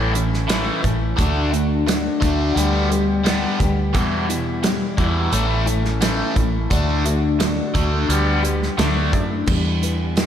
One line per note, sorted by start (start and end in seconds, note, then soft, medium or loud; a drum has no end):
0.00 0.68 A1 medium
0.00 0.14 A2 medium
0.00 0.14 E3 medium
0.00 0.15 A3 medium
0.00 0.14 C#4 medium
0.00 0.13 E4 medium
0.13 0.45 A2 medium
0.13 0.45 E3 medium
0.13 0.49 A3 soft
0.13 0.49 C#4 soft
0.13 0.49 E4 medium
0.13 closed hi-hat medium
0.34 snare soft
0.48 0.81 A2 medium
0.48 0.83 E3 medium
0.48 0.84 A3 medium
0.48 0.83 C#4 medium
0.48 0.82 E4 medium
0.48 snare loud
0.48 closed hi-hat medium
0.82 1.13 A1 medium
0.82 1.14 A2 medium
0.82 1.14 E3 medium
0.82 1.17 A3 soft
0.82 1.18 C#4 soft
0.82 1.18 E4 medium
0.82 kick medium
0.82 closed hi-hat medium
1.18 2.07 D2 medium
1.18 1.52 D3 medium
1.18 1.53 A3 medium
1.18 1.52 D4 medium
1.18 1.51 F#4 medium
1.18 kick loud
1.18 closed hi-hat medium
1.52 1.83 D3 medium
1.52 1.86 A3 soft
1.52 1.87 D4 soft
1.52 1.87 F#4 medium
1.52 closed hi-hat medium
1.86 2.21 D3 medium
1.86 2.22 A3 medium
1.86 2.21 D4 medium
1.86 2.20 F#4 medium
1.86 snare medium
1.86 closed hi-hat medium
2.20 2.51 D2 medium
2.20 2.53 D3 medium
2.20 2.56 A3 soft
2.20 2.56 D4 medium
2.20 2.56 F#4 medium
2.20 kick medium
2.20 closed hi-hat medium
2.56 3.45 D2 medium
2.56 2.90 D3 medium
2.56 2.91 G3 medium
2.56 2.91 B3 medium
2.56 2.89 G4 medium
2.56 closed hi-hat medium
2.90 3.21 D3 medium
2.90 3.25 G3 medium
2.90 3.26 B3 medium
2.90 3.25 G4 medium
2.90 closed hi-hat soft
3.25 3.60 D3 medium
3.25 3.60 G3 medium
3.25 3.60 B3 medium
3.25 3.59 G4 medium
3.25 snare loud
3.25 closed hi-hat medium
3.59 3.95 D2 medium
3.59 3.90 D3 medium
3.59 3.95 G3 soft
3.59 3.95 B3 soft
3.59 3.94 G4 medium
3.59 kick medium
3.59 closed hi-hat medium
3.95 4.29 E2 medium
3.95 4.83 E2 loud
3.95 4.29 B2 medium
3.95 4.29 E3 medium
3.95 4.30 G3 medium
3.95 4.29 B3 medium
3.95 4.28 E4 medium
3.95 kick loud
3.95 closed hi-hat medium
4.29 4.60 E2 medium
4.29 4.60 B2 medium
4.29 4.63 E3 soft
4.29 4.64 G3 soft
4.29 4.64 B3 medium
4.29 4.64 E4 medium
4.29 closed hi-hat medium
4.63 4.94 E2 medium
4.63 4.94 B2 medium
4.63 4.98 E3 medium
4.63 4.98 G3 medium
4.63 4.97 B3 medium
4.63 4.97 E4 medium
4.63 snare loud
4.63 closed hi-hat medium
4.97 5.30 E2 medium
4.97 5.28 E2 medium
4.97 5.30 B2 medium
4.97 5.31 E3 soft
4.97 5.32 G3 soft
4.97 5.32 B3 soft
4.97 5.32 E4 medium
4.97 kick medium
4.97 closed hi-hat soft
5.32 6.21 A1 loud
5.32 5.67 A2 medium
5.32 5.67 E3 medium
5.32 5.67 A3 medium
5.32 5.66 C#4 medium
5.32 5.65 E4 medium
5.32 closed hi-hat medium
5.66 5.98 A2 medium
5.66 5.98 E3 medium
5.66 6.00 A3 soft
5.66 6.01 C#4 medium
5.66 6.01 E4 medium
5.66 closed hi-hat medium
5.85 snare soft
6.01 6.34 A2 medium
6.01 6.36 E3 medium
6.01 6.36 A3 medium
6.01 6.36 C#4 medium
6.01 6.35 E4 medium
6.01 snare loud
6.01 closed hi-hat medium
6.36 6.66 A1 medium
6.36 6.67 A2 medium
6.36 6.67 E3 medium
6.36 6.70 A3 soft
6.36 6.71 C#4 soft
6.36 6.71 E4 soft
6.36 kick medium
6.36 closed hi-hat medium
6.70 7.59 D2 medium
6.70 7.05 D3 medium
6.70 7.05 A3 medium
6.70 7.04 D4 medium
6.70 7.03 F#4 medium
6.70 kick loud
6.70 closed hi-hat medium
7.04 7.37 D3 medium
7.04 7.39 A3 soft
7.04 7.40 D4 soft
7.04 7.39 F#4 medium
7.04 closed hi-hat medium
7.40 7.74 D3 medium
7.40 7.75 A3 medium
7.40 7.75 D4 medium
7.40 7.73 F#4 medium
7.40 snare loud
7.40 closed hi-hat medium
7.74 8.04 D2 medium
7.74 8.07 D3 medium
7.74 8.10 A3 soft
7.74 8.10 D4 soft
7.74 8.09 F#4 soft
7.74 kick medium
7.74 closed hi-hat medium
8.09 8.68 D2 medium
8.09 8.44 D3 medium
8.09 8.44 G3 medium
8.09 8.43 B3 medium
8.09 8.42 G4 medium
8.09 closed hi-hat medium
8.43 8.75 D3 medium
8.43 8.78 G3 soft
8.43 8.79 B3 soft
8.43 8.78 G4 medium
8.43 closed hi-hat medium
8.63 snare soft
8.77 9.13 D2 medium
8.77 9.11 D3 medium
8.77 9.12 F#3 medium
8.77 9.13 A3 medium
8.77 9.12 D4 medium
8.77 9.11 E4 medium
8.77 snare loud
8.77 closed hi-hat medium
9.12 9.43 F#2 medium
9.12 9.44 D3 medium
9.12 9.47 A3 soft
9.12 9.47 D4 soft
9.12 9.47 E4 soft
9.12 kick medium
9.12 closed hi-hat medium
9.46 9.81 E2 medium
9.46 10.26 E2 loud
9.46 9.82 B2 medium
9.46 9.82 E3 medium
9.46 9.82 G3 medium
9.46 9.82 B3 medium
9.46 9.81 E4 medium
9.46 kick loud
9.46 crash medium
9.82 10.14 E3 soft
9.82 10.15 G3 soft
9.82 10.16 B3 soft
9.82 10.17 E4 medium
9.82 closed hi-hat medium
10.16 10.26 E3 medium
10.16 10.26 G3 medium
10.16 10.26 B3 medium
10.16 10.26 E4 medium
10.16 snare loud
10.16 closed hi-hat medium